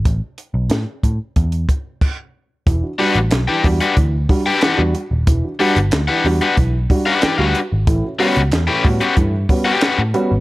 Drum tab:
CC |------------x---|----------------|----------------|----------------|
HH |x-x-x-x-xxx-----|x-oxx-oxx-o-x-x-|x-oxx-oxx-o-x-x-|x-oxx-oxx-o-x-x-|
CP |----------------|----x-------x---|----x-------x---|----x-------x---|
SD |----o-----------|----o-------o---|----o-------o---|----o-------o---|
BD |o-----o-o-o-o---|o-----o-o-o-----|o-------o-o-----|o-----o-o-o-----|